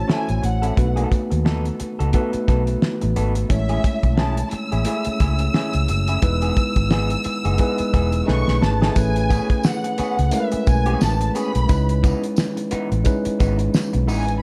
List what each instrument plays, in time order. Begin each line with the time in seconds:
Already playing: tine electric piano A3 C#4 E4 F#4 C5 C#5
0.08 clean electric guitar C#4 E4 A4, violin section G#5, snare
0.29 fingered electric bass A1, closed hi-hat
0.42 fingered electric bass A1, violin section F#5, muted clean electric guitar stroke, closed hi-hat
0.62 clean electric guitar C#4 E4 A4, closed hi-hat
0.76 fingered electric bass B1, tine electric piano A3 B3 D4 F#4 B4, muted clean electric guitar stroke, kick, closed hi-hat
0.84 tine electric piano D#4
0.96 clean electric guitar B3 D#4 A4, closed hi-hat
1.12 kick, closed hi-hat
1.31 fingered electric bass D#2, muted clean electric guitar stroke, closed hi-hat
1.45 clean electric guitar B3 D#4 A4, snare
1.65 closed hi-hat
1.80 muted clean electric guitar stroke, muted fingered electric bass stroke, closed hi-hat
1.99 fingered electric bass C#2, clean electric guitar B3 D#4 A4, closed hi-hat
2.13 tine electric piano A3 B3 D#4 F#4 B4, clean electric guitar B3 D#4 A4, kick, closed hi-hat
2.33 muted clean electric guitar stroke, muted fingered electric bass stroke, closed hi-hat
2.48 fingered electric bass B1, clean electric guitar B3 D#4 A4, kick, snare, closed hi-hat
2.67 muted clean electric guitar stroke, closed hi-hat
2.82 snare
3.01 fingered electric bass A1, muted clean electric guitar stroke, closed hi-hat
3.16 fingered electric bass G#1, clean electric guitar B3 D#4 A4, closed hi-hat
3.35 muted clean electric guitar stroke, closed hi-hat
3.49 fingered electric bass A1, tine electric piano G#3 A3 C#4 E4 C#5, violin section E5, muted clean electric guitar stroke, kick, closed hi-hat
3.69 clean electric guitar C#4 E4 G#4, closed hi-hat
3.84 muted clean electric guitar stroke, kick, closed hi-hat
4.03 fingered electric bass B1, muted clean electric guitar stroke, kick, closed hi-hat
4.18 clean electric guitar C#4 E4 G#4, violin section A5, snare
4.37 closed hi-hat
4.51 violin section E6, muted clean electric guitar stroke, muted fingered electric bass stroke, closed hi-hat
4.72 fingered electric bass A1, clean electric guitar C#4 E4 G#4, closed hi-hat
4.85 tine electric piano A3 C#4 E4 G#4 E5, clean electric guitar C#4 E4 G#4, closed hi-hat
5.05 muted clean electric guitar stroke, muted fingered electric bass stroke, closed hi-hat
5.20 fingered electric bass C#2, clean electric guitar C#4 E4 G#4, kick, snare, closed hi-hat
5.39 muted clean electric guitar stroke, closed hi-hat
5.54 clean electric guitar C#4 E4 G#4, snare
5.73 fingered electric bass C#2, closed hi-hat
5.88 fingered electric bass F#1, muted clean electric guitar stroke, closed hi-hat
6.08 clean electric guitar C#4 E4 G#4, closed hi-hat
6.21 fingered electric bass E1, tine electric piano G#3 B3 D#4 E4 B4, muted clean electric guitar stroke, kick, closed hi-hat
6.42 clean electric guitar B3 D#4 G#4, closed hi-hat
6.57 muted clean electric guitar stroke, kick, closed hi-hat
6.76 fingered electric bass G#1, muted clean electric guitar stroke, kick, closed hi-hat
6.91 clean electric guitar B3 D#4 G#4, snare
7.10 closed hi-hat
7.24 muted clean electric guitar stroke, muted fingered electric bass stroke, closed hi-hat
7.45 fingered electric bass F#1, clean electric guitar B3 D#4 G#4, closed hi-hat
7.58 tine electric piano G#3 B3 D#4 E4 B4, clean electric guitar B3 D#4 G#4, kick, closed hi-hat
7.78 muted clean electric guitar stroke, muted fingered electric bass stroke, closed hi-hat
7.93 fingered electric bass E1, clean electric guitar B3 D#4 G#4, kick, snare, closed hi-hat
8.12 muted clean electric guitar stroke, closed hi-hat
8.26 fingered electric bass B1, tine electric piano A3 C#4 D#4 G#4 B4, clean electric guitar A3 D#4 G#4, violin section C#6, snare
8.48 fingered electric bass B1, snare
8.61 fingered electric bass G#1, violin section A5, muted clean electric guitar stroke, snare
8.82 clean electric guitar A3 D#4 G#4, snare
8.95 fingered electric bass A1, tine electric piano A3 C#4 E4 G#4 B4, violin section G#5, kick, closed hi-hat, tambourine
9.16 closed hi-hat
9.30 clean electric guitar B3 C#4 G#4, kick, closed hi-hat, tambourine
9.50 kick, closed hi-hat
9.63 violin section F#5, snare, tambourine
9.84 muted clean electric guitar stroke, closed hi-hat
9.98 clean electric guitar B3 C#4 G#4, muted fingered electric bass stroke, closed hi-hat, tambourine
10.18 fingered electric bass C#2, muted clean electric guitar stroke, closed hi-hat
10.31 tine electric piano G#3 A3 C#4 E4 A#4, violin section E5, muted clean electric guitar stroke, closed hi-hat, tambourine
10.40 tine electric piano B4
10.52 muted clean electric guitar stroke, muted fingered electric bass stroke, closed hi-hat
10.67 fingered electric bass B1, violin section G#5, kick, closed hi-hat, tambourine
10.86 clean electric guitar B3 C#4 G#4, closed hi-hat
11.01 fingered electric bass A1, violin section A5, snare, tambourine
11.20 muted clean electric guitar stroke, closed hi-hat
11.35 clean electric guitar B3 C#4 G#4, violin section B5, closed hi-hat, tambourine
11.55 fingered electric bass B1, muted clean electric guitar stroke, closed hi-hat
11.68 fingered electric bass C#2, tine electric piano G#3 C#4 D#4 E4 B4, kick, closed hi-hat, tambourine
11.89 closed hi-hat
12.03 clean electric guitar E3 B3 D#4, kick, closed hi-hat, tambourine
12.23 closed hi-hat
12.36 snare, tambourine
12.57 muted clean electric guitar stroke, closed hi-hat
12.71 clean electric guitar E3 B3 D#4, muted fingered electric bass stroke, closed hi-hat
12.92 fingered electric bass A1, muted clean electric guitar stroke, closed hi-hat
13.04 tine electric piano G#3 C#4 D#4 E4 B4, muted clean electric guitar stroke, kick, closed hi-hat, tambourine
13.25 muted clean electric guitar stroke, muted fingered electric bass stroke, closed hi-hat
13.40 fingered electric bass G#1, clean electric guitar E3 B3 D#4, kick, closed hi-hat, tambourine
13.59 muted clean electric guitar stroke, closed hi-hat
13.74 snare, tambourine
13.93 fingered electric bass B1, muted clean electric guitar stroke, closed hi-hat
14.08 fingered electric bass A1, clean electric guitar E3 B3 D#4, violin section G#5, open hi-hat, tambourine
14.28 muted clean electric guitar stroke, closed hi-hat
14.39 violin section B5